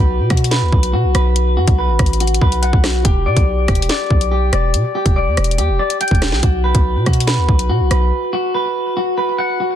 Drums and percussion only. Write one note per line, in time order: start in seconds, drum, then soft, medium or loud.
0.30 kick loud
0.30 cross-stick loud
0.30 closed hi-hat medium
0.37 closed hi-hat medium
0.44 closed hi-hat medium
0.51 snare loud
0.51 closed hi-hat medium
0.72 kick medium
0.83 closed hi-hat medium
1.15 cross-stick loud
1.15 closed hi-hat medium
1.36 closed hi-hat medium
1.68 kick loud
1.68 closed hi-hat medium
1.99 kick loud
1.99 cross-stick loud
1.99 closed hi-hat medium
2.06 closed hi-hat medium
2.13 closed hi-hat medium
2.20 closed hi-hat medium
2.27 closed hi-hat medium
2.34 closed hi-hat medium
2.41 kick loud
2.52 closed hi-hat medium
2.63 closed hi-hat medium
2.73 kick loud
2.84 cross-stick loud
2.84 snare loud
2.84 open hi-hat medium
3.05 kick loud
3.05 closed hi-hat medium
3.37 kick loud
3.37 closed hi-hat medium
3.68 kick loud
3.68 cross-stick loud
3.68 closed hi-hat medium
3.75 closed hi-hat medium
3.82 closed hi-hat medium
3.89 snare loud
3.89 closed hi-hat medium
4.10 kick medium
4.21 closed hi-hat medium
4.53 cross-stick loud
4.53 closed hi-hat medium
4.74 closed hi-hat medium
5.06 kick loud
5.06 closed hi-hat medium
5.37 cross-stick loud
5.37 closed hi-hat medium
5.44 closed hi-hat medium
5.51 closed hi-hat medium
5.58 closed hi-hat medium
5.90 closed hi-hat medium
6.01 closed hi-hat medium
6.08 kick loud
6.08 closed hi-hat medium
6.15 closed hi-hat soft
6.22 cross-stick loud
6.22 snare loud
6.22 closed hi-hat medium
6.32 snare medium
6.43 kick loud
6.43 closed hi-hat medium
6.75 kick loud
6.75 closed hi-hat medium
7.06 kick loud
7.06 cross-stick loud
7.06 closed hi-hat medium
7.13 closed hi-hat medium
7.20 closed hi-hat medium
7.27 snare loud
7.27 closed hi-hat medium
7.49 kick medium
7.59 closed hi-hat medium
7.91 cross-stick loud
7.91 closed hi-hat medium